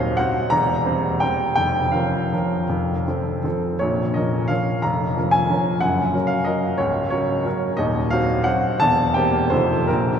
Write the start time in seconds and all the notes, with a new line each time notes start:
Already playing: D#1 D#2 F#3 C4 C5 D#5 F5
0.17 F#3 C4 C5 F#5
0.50 E1 E2 A#5
0.85 G3 C4 C5
1.20 G3 C4 C5 G5
1.56 F1 F2 G5
1.92 F3 C#4 A#4 F5
2.33 F3 C#4 A#4
2.69 F1 F2
3.08 F3 C4 A4
3.44 F3 C4 A4
3.79 A#1 A#2 C#5
4.14 F3 C#4 A#4 D#5
4.48 F3 C#4 A#4 F5
4.82 F1 F2 A#5
5.17 F3 C#4 A#4
5.31 G#5
5.50 F3 C#4 A#4
5.80 F#1 F#2 F#5
6.13 F#3 C#4 A#4
6.27 F5
6.45 F#3 C#4 A#4 D#5
6.78 C#1 C#2 C#5
7.10 F#3 C#4 A#4 C#5
7.45 F#3 C#4 A#4
7.77 D#1 D#2 D#5
8.10 F#3 C4 F#4 F5
8.44 F#3 C4 F#4 F#5
8.80 E1 E2 A5
9.14 A#3 C4 G4 G5
9.50 F1 F2 A3 D#4 F4 C5
9.87 A#1 A#2 A#4